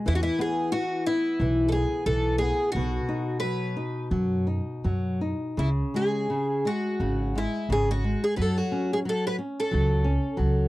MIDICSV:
0, 0, Header, 1, 4, 480
1, 0, Start_track
1, 0, Key_signature, 4, "major"
1, 0, Tempo, 670391
1, 49, Time_signature, 4, 2, 24, 8
1, 2450, Tempo, 711744
1, 5330, Tempo, 670391
1, 7469, End_track
2, 0, Start_track
2, 0, Title_t, "Twelve-string acoustic guitar"
2, 0, Program_c, 0, 25
2, 55, Note_on_c, 0, 64, 72
2, 101, Note_off_c, 0, 64, 0
2, 109, Note_on_c, 0, 66, 65
2, 150, Note_off_c, 0, 66, 0
2, 163, Note_on_c, 0, 64, 69
2, 293, Note_off_c, 0, 64, 0
2, 295, Note_on_c, 0, 68, 70
2, 513, Note_off_c, 0, 68, 0
2, 516, Note_on_c, 0, 66, 76
2, 741, Note_off_c, 0, 66, 0
2, 762, Note_on_c, 0, 64, 76
2, 1206, Note_off_c, 0, 64, 0
2, 1207, Note_on_c, 0, 69, 53
2, 1230, Note_off_c, 0, 69, 0
2, 1233, Note_on_c, 0, 68, 69
2, 1473, Note_off_c, 0, 68, 0
2, 1476, Note_on_c, 0, 69, 69
2, 1704, Note_off_c, 0, 69, 0
2, 1707, Note_on_c, 0, 68, 74
2, 1944, Note_off_c, 0, 68, 0
2, 1946, Note_on_c, 0, 66, 76
2, 2429, Note_off_c, 0, 66, 0
2, 2432, Note_on_c, 0, 71, 74
2, 2884, Note_off_c, 0, 71, 0
2, 3912, Note_on_c, 0, 64, 59
2, 3976, Note_off_c, 0, 64, 0
2, 4163, Note_on_c, 0, 68, 62
2, 4641, Note_on_c, 0, 66, 65
2, 4648, Note_off_c, 0, 68, 0
2, 5118, Note_on_c, 0, 64, 65
2, 5120, Note_off_c, 0, 66, 0
2, 5348, Note_off_c, 0, 64, 0
2, 5353, Note_on_c, 0, 68, 73
2, 5467, Note_off_c, 0, 68, 0
2, 5485, Note_on_c, 0, 66, 69
2, 5721, Note_off_c, 0, 66, 0
2, 5721, Note_on_c, 0, 68, 75
2, 5803, Note_off_c, 0, 68, 0
2, 5811, Note_on_c, 0, 71, 56
2, 5847, Note_off_c, 0, 71, 0
2, 5847, Note_on_c, 0, 69, 80
2, 5963, Note_off_c, 0, 69, 0
2, 5963, Note_on_c, 0, 66, 70
2, 6202, Note_off_c, 0, 66, 0
2, 6218, Note_on_c, 0, 68, 65
2, 6254, Note_off_c, 0, 68, 0
2, 6332, Note_on_c, 0, 69, 73
2, 6442, Note_off_c, 0, 69, 0
2, 6459, Note_on_c, 0, 71, 76
2, 6519, Note_off_c, 0, 71, 0
2, 6694, Note_on_c, 0, 69, 68
2, 7469, Note_off_c, 0, 69, 0
2, 7469, End_track
3, 0, Start_track
3, 0, Title_t, "Nylon-string guitar"
3, 0, Program_c, 1, 24
3, 42, Note_on_c, 1, 52, 60
3, 277, Note_on_c, 1, 59, 51
3, 511, Note_off_c, 1, 59, 0
3, 518, Note_off_c, 1, 52, 0
3, 526, Note_on_c, 1, 52, 44
3, 756, Note_off_c, 1, 52, 0
3, 767, Note_on_c, 1, 59, 48
3, 997, Note_off_c, 1, 59, 0
3, 1009, Note_on_c, 1, 52, 49
3, 1238, Note_off_c, 1, 52, 0
3, 1250, Note_on_c, 1, 59, 44
3, 1479, Note_off_c, 1, 59, 0
3, 1485, Note_on_c, 1, 52, 45
3, 1717, Note_off_c, 1, 52, 0
3, 1725, Note_on_c, 1, 59, 48
3, 1958, Note_off_c, 1, 59, 0
3, 1974, Note_on_c, 1, 47, 55
3, 2209, Note_on_c, 1, 63, 46
3, 2445, Note_off_c, 1, 63, 0
3, 2453, Note_on_c, 1, 54, 42
3, 2677, Note_off_c, 1, 54, 0
3, 2682, Note_on_c, 1, 63, 43
3, 2912, Note_off_c, 1, 63, 0
3, 2916, Note_on_c, 1, 54, 47
3, 3151, Note_off_c, 1, 54, 0
3, 3156, Note_on_c, 1, 63, 39
3, 3396, Note_off_c, 1, 63, 0
3, 3409, Note_on_c, 1, 54, 44
3, 3646, Note_off_c, 1, 54, 0
3, 3657, Note_on_c, 1, 63, 44
3, 3874, Note_off_c, 1, 47, 0
3, 3892, Note_off_c, 1, 63, 0
3, 3900, Note_on_c, 1, 49, 48
3, 4150, Note_on_c, 1, 56, 45
3, 4380, Note_off_c, 1, 56, 0
3, 4382, Note_off_c, 1, 49, 0
3, 4390, Note_on_c, 1, 49, 41
3, 4619, Note_off_c, 1, 49, 0
3, 4628, Note_on_c, 1, 56, 43
3, 4857, Note_off_c, 1, 56, 0
3, 4865, Note_on_c, 1, 49, 44
3, 5092, Note_off_c, 1, 49, 0
3, 5102, Note_on_c, 1, 56, 42
3, 5326, Note_off_c, 1, 56, 0
3, 5333, Note_on_c, 1, 49, 51
3, 5570, Note_off_c, 1, 49, 0
3, 5580, Note_on_c, 1, 56, 46
3, 5815, Note_off_c, 1, 56, 0
3, 5816, Note_on_c, 1, 54, 55
3, 6064, Note_on_c, 1, 61, 46
3, 6295, Note_off_c, 1, 54, 0
3, 6299, Note_off_c, 1, 61, 0
3, 6304, Note_on_c, 1, 54, 48
3, 6538, Note_off_c, 1, 54, 0
3, 6542, Note_on_c, 1, 61, 43
3, 6775, Note_off_c, 1, 61, 0
3, 6776, Note_on_c, 1, 54, 51
3, 7009, Note_off_c, 1, 54, 0
3, 7014, Note_on_c, 1, 61, 41
3, 7244, Note_off_c, 1, 61, 0
3, 7248, Note_on_c, 1, 54, 49
3, 7469, Note_off_c, 1, 54, 0
3, 7469, End_track
4, 0, Start_track
4, 0, Title_t, "Upright bass"
4, 0, Program_c, 2, 32
4, 53, Note_on_c, 2, 40, 78
4, 205, Note_off_c, 2, 40, 0
4, 1000, Note_on_c, 2, 35, 88
4, 1313, Note_off_c, 2, 35, 0
4, 1476, Note_on_c, 2, 35, 66
4, 1791, Note_off_c, 2, 35, 0
4, 1968, Note_on_c, 2, 35, 72
4, 2125, Note_off_c, 2, 35, 0
4, 2915, Note_on_c, 2, 42, 81
4, 3233, Note_off_c, 2, 42, 0
4, 3413, Note_on_c, 2, 42, 69
4, 3729, Note_off_c, 2, 42, 0
4, 3902, Note_on_c, 2, 37, 64
4, 4058, Note_off_c, 2, 37, 0
4, 4862, Note_on_c, 2, 32, 76
4, 5166, Note_off_c, 2, 32, 0
4, 5327, Note_on_c, 2, 32, 63
4, 5647, Note_off_c, 2, 32, 0
4, 5827, Note_on_c, 2, 42, 73
4, 5983, Note_off_c, 2, 42, 0
4, 6793, Note_on_c, 2, 37, 85
4, 7096, Note_off_c, 2, 37, 0
4, 7261, Note_on_c, 2, 37, 74
4, 7469, Note_off_c, 2, 37, 0
4, 7469, End_track
0, 0, End_of_file